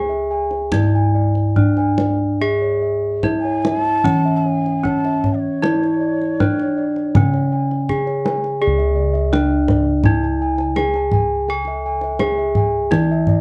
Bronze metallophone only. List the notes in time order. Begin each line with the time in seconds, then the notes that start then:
Already playing: G#4
0.72 E4
1.56 D4
2.42 G#4
3.24 E4
4.04 C#4
4.84 C#4
5.62 E4
6.40 D4
7.16 C#4
7.89 G#4
8.62 G#4
9.33 D4
10.06 E4
10.76 G#4
11.50 A4
12.20 G#4
12.91 E4